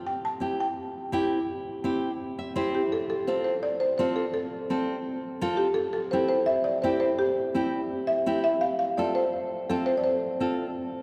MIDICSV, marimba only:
0, 0, Header, 1, 2, 480
1, 0, Start_track
1, 0, Tempo, 356718
1, 79, Time_signature, 4, 2, 24, 8
1, 14834, End_track
2, 0, Start_track
2, 0, Title_t, "Marimba"
2, 0, Program_c, 0, 12
2, 89, Note_on_c, 0, 79, 86
2, 195, Note_off_c, 0, 79, 0
2, 335, Note_on_c, 0, 81, 99
2, 776, Note_off_c, 0, 81, 0
2, 813, Note_on_c, 0, 79, 86
2, 3401, Note_off_c, 0, 79, 0
2, 3696, Note_on_c, 0, 67, 77
2, 3934, Note_on_c, 0, 69, 88
2, 3940, Note_off_c, 0, 67, 0
2, 4041, Note_off_c, 0, 69, 0
2, 4168, Note_on_c, 0, 69, 84
2, 4408, Note_on_c, 0, 72, 83
2, 4417, Note_off_c, 0, 69, 0
2, 4516, Note_off_c, 0, 72, 0
2, 4635, Note_on_c, 0, 72, 89
2, 4747, Note_off_c, 0, 72, 0
2, 4881, Note_on_c, 0, 74, 94
2, 4992, Note_off_c, 0, 74, 0
2, 5116, Note_on_c, 0, 72, 96
2, 5337, Note_off_c, 0, 72, 0
2, 5353, Note_on_c, 0, 72, 79
2, 5595, Note_on_c, 0, 69, 86
2, 5609, Note_off_c, 0, 72, 0
2, 5706, Note_off_c, 0, 69, 0
2, 5837, Note_on_c, 0, 69, 88
2, 7470, Note_off_c, 0, 69, 0
2, 7497, Note_on_c, 0, 67, 87
2, 7727, Note_on_c, 0, 69, 104
2, 7735, Note_off_c, 0, 67, 0
2, 7844, Note_off_c, 0, 69, 0
2, 7979, Note_on_c, 0, 69, 93
2, 8224, Note_on_c, 0, 72, 89
2, 8242, Note_off_c, 0, 69, 0
2, 8338, Note_off_c, 0, 72, 0
2, 8459, Note_on_c, 0, 72, 99
2, 8695, Note_on_c, 0, 76, 107
2, 8722, Note_off_c, 0, 72, 0
2, 8934, Note_off_c, 0, 76, 0
2, 8937, Note_on_c, 0, 74, 92
2, 9052, Note_off_c, 0, 74, 0
2, 9177, Note_on_c, 0, 72, 86
2, 9292, Note_off_c, 0, 72, 0
2, 9419, Note_on_c, 0, 72, 98
2, 9534, Note_off_c, 0, 72, 0
2, 9670, Note_on_c, 0, 67, 99
2, 10824, Note_off_c, 0, 67, 0
2, 10863, Note_on_c, 0, 76, 107
2, 11320, Note_off_c, 0, 76, 0
2, 11355, Note_on_c, 0, 76, 108
2, 11587, Note_on_c, 0, 77, 103
2, 11608, Note_off_c, 0, 76, 0
2, 11812, Note_off_c, 0, 77, 0
2, 11828, Note_on_c, 0, 77, 93
2, 11940, Note_off_c, 0, 77, 0
2, 12077, Note_on_c, 0, 74, 86
2, 12187, Note_off_c, 0, 74, 0
2, 12313, Note_on_c, 0, 72, 102
2, 12765, Note_off_c, 0, 72, 0
2, 13046, Note_on_c, 0, 69, 80
2, 13154, Note_off_c, 0, 69, 0
2, 13268, Note_on_c, 0, 72, 104
2, 13338, Note_off_c, 0, 72, 0
2, 13422, Note_on_c, 0, 74, 77
2, 13504, Note_on_c, 0, 72, 90
2, 13520, Note_off_c, 0, 74, 0
2, 14420, Note_off_c, 0, 72, 0
2, 14834, End_track
0, 0, End_of_file